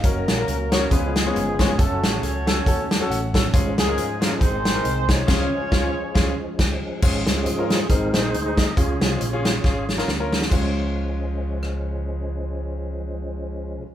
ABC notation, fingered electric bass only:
X:1
M:4/4
L:1/8
Q:"Swing" 1/4=138
K:Db
V:1 name="Fingered electric bass" clef=bass
G,,, B,,, D,,2 D,,2 =G,,,2 | G,,, =A,,, D,,2 E,,2 A,,,2 | A,,, D,, A,,2 A,,,2 C,,2 | D,, z D,, z D,, z D,, z |
A,,, D,, A,,2 A,,, B,,, =D,,2 | D,, C,, B,,,2 A,,,2 =D,,2 | D,,8- | D,,8 |]